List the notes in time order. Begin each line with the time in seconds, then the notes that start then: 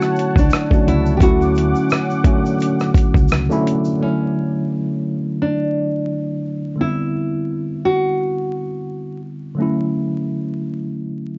Already playing: D3 F#3 A3 C#4 E4 F#4 C#5 F#5 A5
0.01 cross-stick, shaker
0.16 closed hi-hat, shaker
0.36 C#2 D4, kick, shaker
0.50 cross-stick, closed hi-hat, shaker
0.70 D3 F#3 A3 C#4 F#4, kick, shaker
0.87 C#2 E4, closed hi-hat
1.06 shaker
1.17 D3 F#3 C#4 G4 F#5 D6, kick, shaker
1.21 D2 A3 C#4 E4 F#4, closed hi-hat
1.41 shaker
1.55 closed hi-hat, shaker
1.75 shaker
1.90 cross-stick, closed hi-hat, shaker
2.10 shaker
2.24 D3 F#3 A3 C#4 F#4, kick, closed hi-hat
2.46 shaker
2.60 closed hi-hat, shaker
2.80 cross-stick, shaker
2.95 kick, closed hi-hat, shaker
3.15 C#2, kick, shaker
3.29 cross-stick, closed hi-hat, shaker
3.49 D3 F#3 A3 C#4 E4, shaker
3.67 closed hi-hat
3.85 shaker
3.97 D3 F#3 A3
4.03 C#4 E4 C#5
5.42 D4
6.76 D3 G3 B3
6.81 C4 E4
7.85 F#4
9.55 D3 F#3 A3
9.60 C#4 E4